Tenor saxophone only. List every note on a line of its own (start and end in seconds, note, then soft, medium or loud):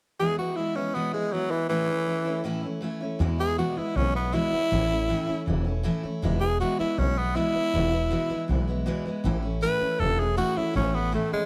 0.20 0.38 G#4 loud
0.38 0.58 F#4 medium
0.56 0.77 E4 medium
0.76 0.96 C#4 medium
0.94 1.13 B3 medium
1.14 1.34 G#3 medium
1.32 1.53 F#3 medium
1.51 1.69 E3 medium
1.69 2.43 E3 loud
3.40 3.58 G#4 loud
3.58 3.79 F#4 medium
3.78 3.98 E4 medium
3.96 4.14 C#4 medium
4.16 4.36 B3 medium
4.34 5.44 E4 loud
6.41 6.59 G#4 loud
6.61 6.79 F#4 medium
6.80 7.00 E4 medium
6.99 7.20 C#4 medium
7.18 7.37 B3 medium
7.36 8.46 E4 loud
9.63 10.01 B4 loud
10.00 10.21 A4 loud
10.20 10.37 G#4 medium
10.38 10.59 F#4 loud
10.57 10.75 E4 medium
10.76 10.96 C#4 loud
10.95 11.13 B3 medium
11.15 11.32 A3 medium
11.33 11.46 G#3 medium